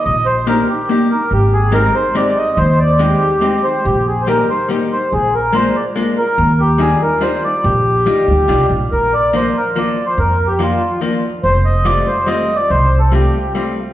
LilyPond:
<<
  \new Staff \with { instrumentName = "Accordion" } { \time 3/4 \key ees \major \tempo 4 = 142 ees''8 c''8 bes'8 g'8 g'8 bes'8 | g'8 aes'8 bes'8 c''8 d''8 ees''8 | c''8 d''8 g'4. c''8 | g'8 aes'16. c''32 bes'8 c''8 r8 c''8 |
aes'8 bes'8 c''8 d''8 r8 bes'8~ | bes'8 g'8 aes'8 bes'8 c''8 d''8 | g'2~ g'8 r8 | \key bes \major bes'8 d''8 c''8 bes'8 \tuplet 3/2 { d''4 c''8 } |
\tuplet 3/2 { bes'4 g'8 } f'4 r4 | c''8 ees''8 d''8 c''8 \tuplet 3/2 { ees''4 d''8 } | \tuplet 3/2 { c''4 a'8 } g'4 r4 | }
  \new Staff \with { instrumentName = "Hollow-body jazz guitar" } { \time 3/4 \key ees \major r4 <bes d' ees' g'>8 r8 <bes d' ees' g'>8 r8 | r4 <aes c' ees' g'>8 r8 <aes c' ees' g'>8 r8 | r4 <aes c' ees' g'>8 r8 <aes c' ees' g'>8 r8 | r4 <g bes ees' g'>8 r8 <g bes ees' g'>8 r8 |
r4 <aes bes d' f'>8 r8 <aes bes d' f'>8 r8 | r4 <g d' ees' f'>8 r8 <g d' ees' f'>8 r8 | r4 <g d' ees' f'>8 r8 <g d' ees' f'>8 r8 | \key bes \major r4 <f bes d' f'>8 r8 <f bes d' f'>8 r8 |
r4 <f bes d' f'>8 r8 <f bes d' f'>8 r8 | r4 <g a c' f'>8 r8 <g a c' f'>8 r8 | r4 <g a c' f'>8 r8 <g a c' f'>8 r8 | }
  \new Staff \with { instrumentName = "Upright bass" } { \clef bass \time 3/4 \key ees \major bes,,2 r4 | aes,,2 r4 | ees,2 r4 | bes,,2 r4 |
bes,,2 r4 | ees,2 r4 | bes,,4. d,8 c,8 bes,,8 | \key bes \major bes,,2 r4 |
f,2 r4 | f,,2 r4 | c,2 r4 | }
>>